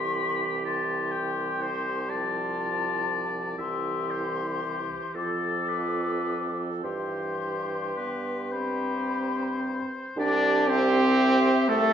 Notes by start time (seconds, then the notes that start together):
Already playing: C2 E3 G4 B5 C6
0.65 A5 C6
1.11 G5
1.62 C5
2.09 F3 F4 D5 A5
3.58 C2 E3 G4 E5 C6
4.10 C5
5.14 F2 F3 A4 D6
5.68 B4
6.83 G2 E3 G4 C5 C6
7.96 B3 B4
8.51 C4 G4 C5 B5
10.17 C2 D4 G4 D5
10.69 C4 C5 E5
11.68 C2 A3 A4